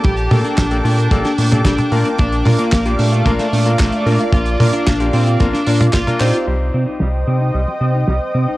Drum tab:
CC |----------------|----------------|----------------|x---------------|
HH |xxoxxxoxxxoxxxox|xxoxxxoxxxoxxxox|xxoxxxoxxxoxxxox|--x-xxx--xxx-xxx|
CP |----x-------x---|----x-------x---|----x-------x-x-|----------------|
SD |----o----o--o---|----o----o--o---|----o----o--o---|----o----o--o---|
T1 |--o--------o-o--|--o-----o-------|--o--------o-o--|----------------|
BD |o---o---o---o---|o---o---o---o---|o---o---o---o---|----------------|